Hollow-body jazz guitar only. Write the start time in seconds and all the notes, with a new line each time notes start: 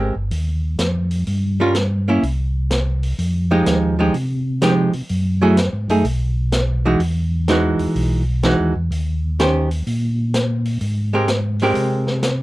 Already playing: G#3 C4 G4 A#4
1.60 G3 C#4 F4 A#4
2.08 A#3 C#4 E4
3.51 F3 G#3 D#4 G4
3.99 F3 G#3 D#4 G4
4.62 F3 G#3 D#4 G4
5.42 F#3 A3 E4 G#4
5.90 A3 D#4 G#4
6.85 E3 G#3 D#4 F#4
7.49 E3 G#3 D#4 F#4
8.44 E3 G#3 D#4 F#4
9.40 D#3 C#4 G4 C5
11.13 G#3 C4 G4 A#4
11.62 G#3 C4 G4 A#4